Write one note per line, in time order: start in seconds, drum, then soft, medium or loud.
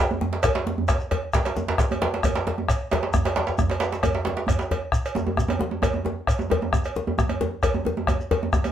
0.11 djembe tone medium
0.21 djembe slap medium
0.21 djembe tone medium
0.21 djembe bass medium
0.33 djembe slap medium
0.43 bombo rim loud
0.43 bombo low loud
0.43 cowbell medium
0.43 djembe bass medium
0.43 shekere medium
0.55 djembe slap loud
0.66 djembe slap medium
0.66 djembe tone medium
0.78 djembe bass medium
0.88 bombo rim loud
0.88 bombo low loud
0.88 cowbell medium
0.88 djembe slap medium
0.88 shekere medium
1.00 djembe slap soft
1.00 shekere soft
1.11 cowbell medium
1.11 djembe slap medium
1.11 djembe tone medium
1.11 djembe bass medium
1.23 bombo rim soft
1.33 bombo rim loud
1.33 bombo low loud
1.33 djembe slap loud
1.33 shekere medium
1.45 cowbell medium
1.45 djembe slap medium
1.45 shekere soft
1.56 djembe slap medium
1.56 djembe tone medium
1.56 shekere soft
1.68 djembe slap loud
1.68 djembe bass medium
1.78 bombo rim loud
1.78 bombo low loud
1.78 djembe slap medium
1.78 shekere medium
1.91 cowbell medium
1.91 djembe tone medium
2.02 djembe slap loud
2.02 djembe slap medium
2.02 djembe tone medium
2.14 djembe slap medium
2.23 bombo rim loud
2.23 bombo low loud
2.23 cowbell medium
2.23 djembe tone medium
2.23 djembe bass medium
2.23 shekere medium
2.35 djembe slap loud
2.35 shekere soft
2.47 djembe slap medium
2.47 djembe tone medium
2.58 bombo rim soft
2.58 djembe tone medium
2.68 bombo rim loud
2.68 bombo low medium
2.68 cowbell medium
2.68 shekere medium
2.81 bombo rim soft
2.91 cowbell medium
2.91 djembe slap loud
2.91 djembe slap medium
2.91 djembe tone medium
2.91 djembe bass medium
2.91 shekere soft
3.03 bombo rim soft
3.03 djembe slap medium
3.13 bombo rim loud
3.13 bombo low loud
3.13 djembe bass medium
3.13 shekere medium
3.25 cowbell medium
3.25 djembe slap medium
3.36 djembe slap loud
3.36 djembe slap medium
3.36 djembe tone medium
3.36 shekere soft
3.47 djembe slap medium
3.47 shekere soft
3.49 djembe slap soft
3.49 djembe bass medium
3.58 bombo rim medium
3.58 bombo low medium
3.58 djembe bass medium
3.58 shekere medium
3.70 cowbell medium
3.70 djembe slap medium
3.70 djembe bass soft
3.80 djembe slap loud
3.80 djembe slap medium
3.80 shekere soft
3.92 djembe slap medium
3.92 shekere soft
4.03 bombo rim medium
4.03 bombo low medium
4.03 cowbell medium
4.03 djembe bass medium
4.03 shekere medium
4.15 djembe slap medium
4.25 djembe slap loud
4.27 djembe slap medium
4.27 djembe tone medium
4.37 djembe slap medium
4.47 bombo rim medium
4.47 bombo low medium
4.47 cowbell medium
4.47 djembe bass medium
4.47 shekere medium
4.59 djembe slap medium
4.61 djembe slap soft
4.61 shekere soft
4.71 cowbell medium
4.71 djembe slap medium
4.71 djembe bass medium
4.82 bombo rim soft
4.92 bombo rim loud
4.92 bombo low medium
4.92 shekere medium
5.06 cowbell medium
5.06 shekere soft
5.15 djembe slap medium
5.15 djembe tone loud
5.15 djembe tone medium
5.15 shekere soft
5.27 djembe tone medium
5.27 djembe bass medium
5.37 bombo rim medium
5.37 bombo low medium
5.37 djembe tone medium
5.37 shekere medium
5.48 cowbell medium
5.48 djembe tone loud
5.59 djembe slap medium
5.59 djembe tone medium
5.71 djembe tone medium
5.82 bombo rim medium
5.82 bombo low medium
5.82 cowbell medium
5.82 djembe tone medium
5.82 djembe bass medium
5.82 shekere medium
5.94 djembe tone medium
6.05 djembe slap medium
6.05 djembe tone medium
6.27 bombo rim loud
6.27 bombo low loud
6.27 cowbell medium
6.27 shekere medium
6.39 djembe slap soft
6.39 djembe tone medium
6.39 shekere soft
6.50 cowbell soft
6.50 djembe slap medium
6.50 djembe tone medium
6.52 djembe tone medium
6.52 djembe bass medium
6.62 bombo rim soft
6.62 djembe tone medium
6.73 bombo rim loud
6.73 bombo low loud
6.73 djembe tone medium
6.73 shekere soft
6.84 cowbell medium
6.84 shekere soft
6.95 djembe slap medium
6.95 djembe tone medium
6.95 shekere soft
7.07 djembe tone medium
7.07 djembe bass medium
7.18 bombo rim loud
7.18 bombo low loud
7.18 djembe tone medium
7.18 shekere medium
7.29 cowbell soft
7.29 djembe tone medium
7.41 djembe slap loud
7.41 djembe tone medium
7.41 djembe tone loud
7.63 bombo rim loud
7.63 bombo low loud
7.63 cowbell medium
7.63 djembe bass loud
7.63 shekere medium
7.74 djembe tone medium
7.85 djembe slap medium
7.85 djembe tone medium
7.97 djembe tone medium
8.07 bombo rim loud
8.07 bombo low loud
8.07 cowbell soft
8.07 djembe tone medium
8.07 shekere medium
8.20 djembe slap soft
8.20 shekere soft
8.31 cowbell soft
8.31 djembe slap medium
8.31 djembe tone medium
8.31 djembe bass medium
8.42 bombo rim soft
8.42 djembe tone medium
8.53 bombo rim loud
8.53 bombo low loud
8.53 djembe tone medium
8.53 shekere medium
8.64 cowbell soft
8.64 djembe tone medium
8.64 shekere soft